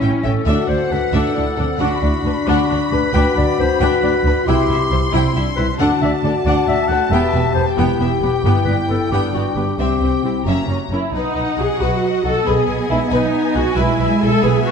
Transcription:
Already playing: G3 C#4 E4
0.01 A1 C#4 E5 G5
0.24 A1 C#4 A4 E5 G5
0.46 D2 D4 F#4 A4 E5 F#5
0.68 D2 D4 C5 D5
0.90 D2 D4 A4 B4
1.12 D2 D4 A4 E5
1.34 D2 D4 E4 D5
1.57 D2 C4 D4 A4
1.78 D2 D4 F#4 F#5 B5
2.01 D2 D4 E4 D5
2.22 D2 D4 B4
2.47 D2 D4 F#4 F#5
2.70 D2 D4 D5
2.92 D2 D4 B4
3.13 D2 D4 F#4 B4 G5
3.36 D2 D4 D5
3.58 D2 D4 B4 C5
3.80 D2 D4 B4 G5
4.02 D2 D4 D5
4.24 D2 D4 B4
4.45 C2 E4 G4 G5 C6
4.68 C2 E4 E5
4.90 C2 E4 C5
5.12 C2 C4 E4 G5
5.35 C2 D4 E4 E5
5.56 C2 E4 B4 C5
5.79 D2 D4 F#4 A4 F#5 A5
6.01 D2 D4 D5 E5
6.23 D2 D4 A4 D5
6.45 D2 D4 D5 F#5
6.67 D2 D4 D5 E5
6.88 D2 D4 A4 F#5
7.11 E1 E2 B3 G4 E5 G5
7.34 E1 E2 B3 E5
7.54 E1 E2 B3 B4 C5
7.76 E1 E2 B3 E4 G5
8.00 E1 E2 B3 E5
8.21 E1 E2 B3 G4 B4
8.43 G1 G2 B3 E4 G4 G5
8.64 G1 G2 B3 B4 D5
8.88 G1 G2 B3 A4 B4
9.12 G1 G2 B3 D4 G4 G5
9.33 G1 G2 B3 F#4 D5
9.55 G1 G2 B3 G4 B4
9.77 C2 C3 C4 G4 E5 G5
10.00 C2 C3 C4 C5
10.22 C2 C3 C4 E4 G4
10.46 F#1 F#2 A#3 C#4 F#4 E5 A#5
10.68 F#1 F#2 C#4 C#5
10.90 F#1 F#2 C#4 E4 A#4
11.13 B1 D#4 B4 D#5 F#5
11.36 B1 B4
11.58 B1 F#3 D#4 F#4 G#4
11.79 B1 F#3 F#4 B4
12.24 B1 F#3 D#4 F#4 A4
12.46 B1 B3 G#4 B4 G#5
12.67 B1 B4
12.88 B1 G#3 D#4 E4 G#4
13.11 B1 D#4 B4
13.55 B1 G#3 D#4 F#4 G#4
13.76 B1 G#3 E4 B4 E5
13.98 B1 B4
14.21 B1 G#3 E4 G#4 A4
14.42 B1 G#4 B4
14.46 B3
14.65 F#4

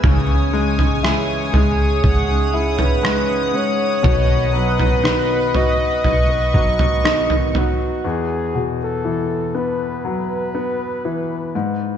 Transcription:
0.03 C#2 C#3 E3 G#3 C#4 D#4 G#4 C#5 G#5 D#6, kick, floor tom
0.53 G#3 C#4 D#4 G#4
0.78 G#3 C#4 D#4 G#4, floor tom
1.03 C#3 E3 G#3 C#4 D#4 E4 G#4, cross-stick
1.53 C#2 G#3 C#4 D#4 G#4, floor tom
2.04 C#2 F#5, kick, floor tom
2.29 G#3 C#4 D#4 G#4
2.53 G#3 C#4 D#4 E4 G#4
2.79 G#3 C#4 D#4 G#4 B4, floor tom
3.03 C#3 E3 G#3 C#4 D#4 G#4, cross-stick
3.54 G#3 C#4 D#4 G#4 C#5
4.03 B1 B2 D#3 F#3 B3 D#4 B4 D#5, kick, floor tom
4.53 F#3 B3 D#4 B4
4.79 F#3 B3 D#4 B4, floor tom
5.03 B2 D#3 F#3 B3 D#4 B4, cross-stick
5.53 F#3 B3 D#4 F#4 B4 D#5, floor tom
6.04 B1 C#6, floor tom
6.29 F#3 B3 D#4 B4
6.54 F#3 B3 D#4 B4, kick
6.79 F#3 B3 D#4 B4, floor tom
7.04 B2 D#3 F#3 B3 D#4 B4, cross-stick
7.30 floor tom
7.53 F#3 B3 D#4 F#4 B4, floor tom
8.05 E2 G#4
8.55 B2
8.83 A4
9.05 E3
9.55 B3 B4
10.05 F#3 B4
10.55 B3
11.05 E3
11.55 G#2

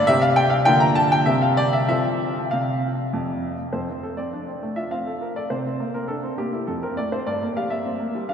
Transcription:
0.07 C3 G3 C4 G4 E5
0.22 F5
0.36 G5
0.50 F5
0.65 D3 F3 A#3 A#4 G5
0.80 A#5
0.95 A5
1.12 G5
1.26 C3 G3 C4 G4 E5
1.42 F5
1.57 D5
1.73 E5
1.89 F3 C4 A4 E5
2.51 C3 F5
3.13 F2
3.73 F2 C5
3.89 C4
4.03 A4
4.17 C4 D5
4.33 D4
4.47 C4
4.62 A3
4.76 F4 E5
4.91 C4 F5
5.07 A4
5.21 A#4
5.36 A4 D5
5.50 C3 C5
5.66 C4
5.80 A#3
5.94 C4 A#4
6.08 D4 A4
6.23 C4
6.38 A#3 G4
6.53 E4
6.67 F2 A4
6.83 C4 A#4
6.97 A3 D5
7.12 C4 C5
7.27 G2 D5
7.42 A#3
7.57 G4 F5
7.70 A#3 E5
7.85 C4
8.00 A#3
8.15 G3
8.29 D4 F5

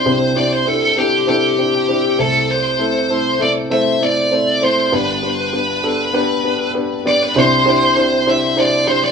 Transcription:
Already playing: C4 D4 E4 G4 C5
0.05 C2 C3 C4 D4 E4 G4
0.35 C4 D4 E4 G4 D5
0.52 C5
0.65 C4 D4 E4 G4 A4
0.97 C4 D4 E4 G4 A4
1.27 C4 D4 E4 G4 A4
1.58 C4 D4 E4 G4
1.88 C4 D4 E4 G4
2.18 C2 C3 A3 C4 E4 A4
2.51 C5
2.79 A3 C4 E4 A4
3.09 A3 C4 E4 A4
3.39 A3 C4 E4 A4 D5
3.70 A3 C4 E4 C5 E5
4.00 A3 C4 E4 A4 D5
4.31 A3 C4 E4 C5
4.61 A3 C4 E4 C5
4.91 G1 G2 B3 D4 G4 B4
5.22 B3 D4 G4 B4
5.53 B3 D4 G4 B4
5.83 B3 D4 G4 A4
6.14 B3 D4 G4 B4
6.44 B3 D4 G4 B4
6.74 B3 D4 G4 B4
7.05 B3 D4 G4 D5
7.23 B4
7.35 C2 C3 D4 E4 G4 C5
7.65 D4 E4 G4 C5
7.96 D4 E4 G4 C5
8.26 D4 E4 G4 C5 E5
8.56 D4 E4 G4 C5 D5
8.86 D4 E4 G4 C5
9.04 D5

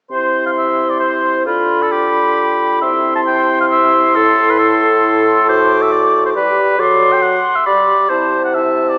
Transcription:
0.10 C3 E4 C5 C6
0.46 F5
0.58 E5
0.90 D5
1.00 C5
1.46 D3 F4 B5
1.82 A4
1.91 G4
2.81 C3 E4 E5 C6
3.16 A5
3.26 G5
3.60 F5
3.71 E5
4.15 A2 A4
4.50 B4
4.59 A4
5.48 F#4 C5 D6
5.82 E5
5.93 D5
6.26 C5
6.35 G3 G4 B4
6.78 F#3 A4 D5 C6
7.13 G5
7.22 F#5
7.56 E5
7.66 G3 G4 D5 B5
8.09 C3 E4 C5 A5
8.44 F#5
8.55 E4 E5 A5
8.89 D5

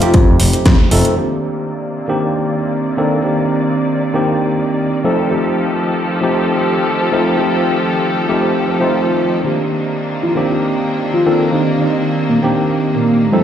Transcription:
Already playing: F4
0.00 F3 A3 C4 D#4 G4, closed hi-hat
0.14 F2, kick, closed hi-hat
0.40 F1, open hi-hat
0.53 muted picked electric bass stroke, closed hi-hat
0.66 F2, kick, snare, closed hi-hat
0.91 F1 F3 A3 C4 D#4 A4, open hi-hat
1.05 closed hi-hat
1.16 C3 D#3 A#3 C4 D4 G4 D5, closed hi-hat
1.57 closed hi-hat
1.69 closed hi-hat
2.08 D#3 A#3 C4 D4 G4, closed hi-hat
2.21 closed hi-hat
2.60 closed hi-hat
2.73 closed hi-hat
2.97 D#3 A#3 C4 D4 A4
3.12 closed hi-hat
3.23 D#3 A#3 C4 D4 G4, closed hi-hat
3.63 closed hi-hat
3.75 closed hi-hat
4.14 D#3 A#3 C4 D4 G4, closed hi-hat
4.27 closed hi-hat
4.67 closed hi-hat
4.79 closed hi-hat
5.04 F3 A3 C4 D#4 G4 A4
5.18 closed hi-hat
5.29 F3 A3 C4 D#4 G4, closed hi-hat
5.70 closed hi-hat
5.82 closed hi-hat
6.21 F3 A3 C4 D#4 G4, closed hi-hat
6.34 closed hi-hat
6.74 closed hi-hat
6.86 closed hi-hat
7.12 F3 A3 C4 D#4 A4
7.25 closed hi-hat
7.37 F3 A3 C4 D#4 G4, closed hi-hat
7.77 closed hi-hat
7.90 closed hi-hat
8.29 F3 A3 C4 D#4 G4, closed hi-hat
8.41 closed hi-hat
8.80 F3 A3 C4 D#4 F4, closed hi-hat
8.93 closed hi-hat
9.32 closed hi-hat
9.44 C3 D#3 A#3 C4 D4 G4, closed hi-hat
9.84 closed hi-hat
9.96 closed hi-hat
10.23 F4
10.35 D#3 A#3 C4 D4 G4, closed hi-hat
10.48 closed hi-hat
10.88 closed hi-hat
11.00 closed hi-hat
11.14 F4
11.26 D#3 A#3 C4 D4 A4
11.40 closed hi-hat
11.51 D#3 A#3 C4 D4 D#4 G4, closed hi-hat
11.78 D#4
11.91 closed hi-hat
12.03 closed hi-hat
12.29 A#3
12.42 D#3 A#3 C4 D4 G4, closed hi-hat
12.55 closed hi-hat
12.95 A#3, closed hi-hat
13.07 closed hi-hat
13.32 F3 A3 C4 D#4 G4 A4

